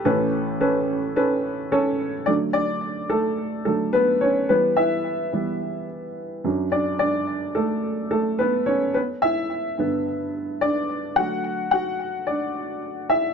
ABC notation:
X:1
M:4/4
L:1/16
Q:1/4=108
K:D
V:1 name="Upright piano"
[CAB]3 z [CAB]3 z [CAB]3 z [CAc]3 z | [Dd]2 [Dd]4 [A,A]4 A2 [B,B]2 [Cc]2 | B2 [Ee]8 z6 | [Dd]2 [Dd]4 [A,A]4 [A,A]2 [B,B]2 [Cc]2 |
[B,B]2 [Ee]8 z2 [Dd]4 | [Ff]4 [Ff]4 [Dd]6 [Ee]2 |]
V:2 name="Upright piano" clef=bass
[A,,,A,,]16 | [D,F,A,]2 z8 [D,F,A,]2 z4 | [E,G,B,]2 z4 [E,G,B,]2 z6 [F,,F,D]2- | [F,,F,D]12- [F,,F,D]2 z2 |
z6 [G,,D,B,]8- [G,,D,B,]2 | [D,F,A,]2 z12 z2 |]